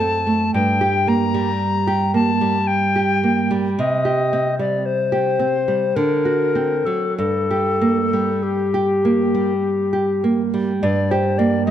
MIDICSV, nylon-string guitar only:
0, 0, Header, 1, 2, 480
1, 0, Start_track
1, 0, Key_signature, -2, "minor"
1, 0, Tempo, 1067616
1, 243, Time_signature, 3, 2, 24, 8
1, 1204, Tempo, 1092896
1, 2644, Tempo, 1221996
1, 4084, Tempo, 1200000
1, 4564, Tempo, 1123596
1, 4941, End_track
2, 0, Start_track
2, 0, Title_t, "Nylon-string guitar"
2, 0, Program_c, 0, 24
2, 0, Note_on_c, 0, 42, 58
2, 0, Note_on_c, 0, 69, 42
2, 3, Note_on_c, 0, 60, 46
2, 75, Note_off_c, 0, 69, 0
2, 120, Note_on_c, 0, 57, 45
2, 194, Note_off_c, 0, 60, 0
2, 223, Note_off_c, 0, 42, 0
2, 241, Note_off_c, 0, 57, 0
2, 244, Note_on_c, 0, 43, 54
2, 364, Note_on_c, 0, 67, 49
2, 482, Note_on_c, 0, 58, 48
2, 557, Note_off_c, 0, 67, 0
2, 604, Note_on_c, 0, 55, 45
2, 676, Note_off_c, 0, 58, 0
2, 842, Note_on_c, 0, 67, 51
2, 963, Note_on_c, 0, 58, 45
2, 986, Note_off_c, 0, 55, 0
2, 1034, Note_off_c, 0, 67, 0
2, 1084, Note_on_c, 0, 55, 45
2, 1155, Note_off_c, 0, 58, 0
2, 1326, Note_on_c, 0, 67, 42
2, 1448, Note_on_c, 0, 58, 50
2, 1472, Note_off_c, 0, 55, 0
2, 1521, Note_off_c, 0, 67, 0
2, 1568, Note_on_c, 0, 55, 47
2, 1643, Note_off_c, 0, 58, 0
2, 1673, Note_off_c, 0, 43, 0
2, 1689, Note_off_c, 0, 55, 0
2, 1690, Note_on_c, 0, 48, 57
2, 1806, Note_on_c, 0, 67, 43
2, 1929, Note_on_c, 0, 60, 46
2, 1995, Note_off_c, 0, 67, 0
2, 2045, Note_on_c, 0, 55, 43
2, 2115, Note_off_c, 0, 60, 0
2, 2277, Note_on_c, 0, 67, 45
2, 2397, Note_on_c, 0, 60, 42
2, 2423, Note_off_c, 0, 55, 0
2, 2470, Note_off_c, 0, 67, 0
2, 2522, Note_on_c, 0, 55, 42
2, 2594, Note_off_c, 0, 60, 0
2, 2628, Note_off_c, 0, 48, 0
2, 2646, Note_off_c, 0, 55, 0
2, 2647, Note_on_c, 0, 50, 60
2, 2760, Note_on_c, 0, 66, 44
2, 2878, Note_on_c, 0, 60, 43
2, 2950, Note_off_c, 0, 66, 0
2, 2999, Note_off_c, 0, 50, 0
2, 3001, Note_on_c, 0, 54, 42
2, 3072, Note_off_c, 0, 60, 0
2, 3123, Note_off_c, 0, 54, 0
2, 3126, Note_on_c, 0, 43, 50
2, 3252, Note_on_c, 0, 67, 42
2, 3374, Note_on_c, 0, 58, 46
2, 3445, Note_off_c, 0, 67, 0
2, 3498, Note_on_c, 0, 55, 37
2, 3566, Note_off_c, 0, 58, 0
2, 3737, Note_on_c, 0, 67, 41
2, 3858, Note_on_c, 0, 58, 40
2, 3878, Note_off_c, 0, 55, 0
2, 3924, Note_off_c, 0, 67, 0
2, 3975, Note_on_c, 0, 55, 40
2, 4042, Note_off_c, 0, 58, 0
2, 4206, Note_on_c, 0, 67, 40
2, 4330, Note_on_c, 0, 58, 43
2, 4354, Note_off_c, 0, 55, 0
2, 4401, Note_off_c, 0, 67, 0
2, 4449, Note_on_c, 0, 55, 42
2, 4520, Note_off_c, 0, 58, 0
2, 4551, Note_off_c, 0, 43, 0
2, 4565, Note_off_c, 0, 55, 0
2, 4566, Note_on_c, 0, 43, 63
2, 4688, Note_on_c, 0, 67, 51
2, 4806, Note_on_c, 0, 58, 58
2, 4878, Note_off_c, 0, 67, 0
2, 4926, Note_on_c, 0, 55, 52
2, 4941, Note_off_c, 0, 43, 0
2, 4941, Note_off_c, 0, 55, 0
2, 4941, Note_off_c, 0, 58, 0
2, 4941, End_track
0, 0, End_of_file